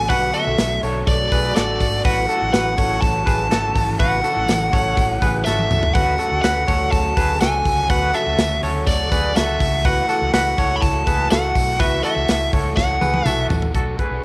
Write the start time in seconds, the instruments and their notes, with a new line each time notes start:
Already playing: analog synth pad D3 A3 B3 F#4, overdriven electric guitar F#3 A3 D4
0.09 fingered electric bass B1, overdriven electric guitar B2 F#3 A3, clean electric guitar F#4 B4, lead electric guitar F#5, kick, hi-hat pedal, open hi-hat
0.14 overdriven electric guitar D4
0.33 clean electric guitar F#4 A4, lead electric guitar E5, hi-hat pedal, open hi-hat, tambourine
0.46 fingered electric bass B1, overdriven electric guitar F#3 A3 D4
0.58 fingered electric bass B1, snare, hi-hat pedal, open hi-hat, tambourine
0.82 fingered electric bass B1, overdriven electric guitar B2 F#3 A3 D4, clean electric guitar A4 C#5, hi-hat pedal, open hi-hat, tambourine
1.06 fingered electric bass B1, overdriven electric guitar B2 F#3 A3 D4, lead electric guitar D5, kick, hi-hat pedal, open hi-hat, tambourine
1.32 fingered electric bass B1, clean electric guitar G#4 B4, kick, hi-hat pedal, open hi-hat, tambourine
1.55 fingered electric bass A1, overdriven electric guitar B2 F#3 A3 D4, clean electric guitar F#4 A4, lead electric guitar D5, snare, hi-hat pedal, open hi-hat, tambourine
1.80 fingered electric bass G#1, overdriven electric guitar B2 F#3 A3 D4, kick, hi-hat pedal, open hi-hat, tambourine
2.04 fingered electric bass A1, overdriven electric guitar A2 F#3 C#4 E4, analog synth pad C#3 E3, clean electric guitar F#4 B4, lead electric guitar F#5, kick, hi-hat pedal, open hi-hat
2.29 clean electric guitar F#4 A4, hi-hat pedal, open hi-hat, tambourine
2.41 fingered electric bass A1, overdriven electric guitar F#3 C#4 E4
2.53 fingered electric bass A1, clean electric guitar F#4 B4, lead electric guitar F#5, snare, hi-hat pedal, open hi-hat, tambourine
2.77 fingered electric bass A1, overdriven electric guitar A2 F#3 C#4 E4, clean electric guitar A4 C#5, kick, hi-hat pedal, open hi-hat, tambourine
3.01 fingered electric bass A1, overdriven electric guitar A2 F#3 C#4 E4, lead electric guitar A5, kick, hi-hat pedal, open hi-hat, tambourine
3.26 fingered electric bass A1, clean electric guitar G#4 B4, kick, hi-hat pedal, open hi-hat, tambourine
3.50 fingered electric bass G#1, overdriven electric guitar A2 F#3 C#4 E4, clean electric guitar F#4 A4, snare, hi-hat pedal, open hi-hat, tambourine
3.75 fingered electric bass G#1, overdriven electric guitar A2 F#3 C#4 E4, kick, hi-hat pedal, open hi-hat, tambourine
3.98 fingered electric bass A1, overdriven electric guitar A2 F#3 C#4 E4, clean electric guitar F#4 B4, lead electric guitar F#5, kick, hi-hat pedal, open hi-hat
4.24 clean electric guitar F#4 A4, hi-hat pedal, open hi-hat, tambourine
4.35 fingered electric bass A1, overdriven electric guitar F#3 C#4 E4
4.48 fingered electric bass A1, snare, hi-hat pedal, open hi-hat, tambourine
4.71 fingered electric bass A1, overdriven electric guitar A2 F#3 C#4 E4, clean electric guitar A4 C#5, kick, hi-hat pedal, open hi-hat, tambourine
4.96 fingered electric bass A1, overdriven electric guitar A2 F#3 C#4 E4, kick, hi-hat pedal, open hi-hat, tambourine
5.22 fingered electric bass A1, clean electric guitar G#4 B4, kick, hi-hat pedal, open hi-hat, tambourine
5.45 fingered electric bass G#1, overdriven electric guitar A2 F#3 C#4 E4, clean electric guitar F#4 A4, lead electric guitar E5, snare, tambourine
5.59 high tom
5.70 fingered electric bass C#2, overdriven electric guitar A2 F#3 C#4 E4, mid tom, tambourine
5.83 floor tom
5.94 fingered electric bass D2, analog synth pad D3, overdriven electric guitar F#3 A3 C#4, clean electric guitar F#4 B4, lead electric guitar F#5, kick, hi-hat pedal, open hi-hat
5.98 overdriven electric guitar F#4
6.18 clean electric guitar F#4 A4, hi-hat pedal, open hi-hat, tambourine
6.31 fingered electric bass D2, overdriven electric guitar A3 C#4 F#4
6.42 fingered electric bass D2, clean electric guitar F#4 B4, lead electric guitar F#5, snare, hi-hat pedal, open hi-hat, tambourine
6.67 fingered electric bass D2, overdriven electric guitar F#3 A3 C#4 F#4, clean electric guitar A4 C#5, kick, hi-hat pedal, open hi-hat, tambourine
6.91 fingered electric bass D2, overdriven electric guitar F#3 A3 C#4 F#4, lead electric guitar A5, kick, hi-hat pedal, open hi-hat, tambourine
7.17 fingered electric bass D2, clean electric guitar G#4 B4, kick, hi-hat pedal, open hi-hat, tambourine
7.40 fingered electric bass C#2, overdriven electric guitar F#3 A3 C#4 F#4, clean electric guitar F#4 A4, lead electric guitar G#5, snare, hi-hat pedal, open hi-hat, tambourine
7.65 fingered electric bass C#2, overdriven electric guitar D3 F#3 A3 C#4 F#4, kick, hi-hat pedal, open hi-hat, tambourine
7.89 fingered electric bass D2, overdriven electric guitar F#3 A3 C#4 F#4, clean electric guitar F#4 B4, lead electric guitar F#5, kick, hi-hat pedal, open hi-hat
8.13 clean electric guitar F#4 A4, lead electric guitar E5, hi-hat pedal, open hi-hat, tambourine
8.25 fingered electric bass D2, overdriven electric guitar A3 C#4 F#4
8.38 fingered electric bass D2, snare, hi-hat pedal, open hi-hat, tambourine
8.62 fingered electric bass D2, overdriven electric guitar F#3 A3 C#4 F#4, clean electric guitar A4 C#5, hi-hat pedal, open hi-hat, tambourine
8.86 fingered electric bass D2, overdriven electric guitar F#3 A3 F#4, lead electric guitar D5, kick, hi-hat pedal, open hi-hat, tambourine
9.12 fingered electric bass D2, clean electric guitar G#4 B4, kick, hi-hat pedal, open hi-hat, tambourine
9.35 fingered electric bass C#2, overdriven electric guitar F#3 A3 C#4 F#4, clean electric guitar F#4 A4, lead electric guitar E5, snare, hi-hat pedal, open hi-hat, tambourine
9.60 fingered electric bass C#2, overdriven electric guitar C#3 E3 A3 E4 F#4, analog synth pad E3 A3, kick, hi-hat pedal, open hi-hat, tambourine
9.84 overdriven electric guitar E3 A3 E4 F#4, clean electric guitar F#4 B4, lead electric guitar F#5, kick, hi-hat pedal, open hi-hat, tambourine
10.09 clean electric guitar F#4 A4, hi-hat pedal, open hi-hat, tambourine
10.20 fingered electric bass C#2, overdriven electric guitar A3 E4 F#4
10.33 fingered electric bass C#2, clean electric guitar F#4 B4, lead electric guitar F#5, snare, hi-hat pedal, open hi-hat, tambourine
10.57 fingered electric bass C#2, overdriven electric guitar E3 A3 E4 F#4, clean electric guitar A4 C#5, kick, hi-hat pedal, open hi-hat, tambourine
10.76 lead electric guitar B5
10.82 fingered electric bass C#2, overdriven electric guitar E3 A3 E4 F#4, lead electric guitar A5, kick, hi-hat pedal, open hi-hat, tambourine
11.07 fingered electric bass C#2, clean electric guitar G#4 B4, kick, hi-hat pedal, open hi-hat, tambourine
11.30 fingered electric bass C#2, overdriven electric guitar E3 A3 E4 F#4, clean electric guitar F#4 A4, lead electric guitar F#5, snare, hi-hat pedal, open hi-hat, tambourine
11.55 fingered electric bass B1, overdriven electric guitar C#3 E3 A3 E4 F#4, kick, hi-hat pedal, open hi-hat, tambourine
11.80 fingered electric bass C#2, overdriven electric guitar E3 A3 E4 F#4, clean electric guitar F#4 B4, lead electric guitar E5, kick, hi-hat pedal, open hi-hat, tambourine
12.03 clean electric guitar F#4 A4, lead electric guitar E5, hi-hat pedal, open hi-hat, tambourine
12.16 fingered electric bass C#2, overdriven electric guitar A3 E4 F#4
12.28 fingered electric bass C#2, snare, hi-hat pedal, open hi-hat, tambourine
12.52 fingered electric bass C#2, overdriven electric guitar E3 A3 E4 F#4, clean electric guitar A4 C#5, kick, hi-hat pedal, open hi-hat
12.76 fingered electric bass C#2, overdriven electric guitar E3 A3 E4 F#4, lead electric guitar F#5, kick, snare, tambourine
13.01 fingered electric bass C#2, clean electric guitar G#4 B4, high tom, tambourine
13.14 high tom
13.25 fingered electric bass B1, overdriven electric guitar E3 A3 E4 F#4, clean electric guitar F#4 A4, lead electric guitar E5, mid tom, tambourine
13.49 fingered electric bass A1, overdriven electric guitar C#3 E3 A3 E4 F#4, floor tom, tambourine
13.62 floor tom
13.73 fingered electric bass B1, overdriven electric guitar F#3 A3 D4 F#4, clean electric guitar F#4 A4, kick, closed hi-hat
13.99 clean electric guitar G#4 B4, kick, closed hi-hat
14.10 fingered electric bass B1, overdriven electric guitar A3 D4 F#4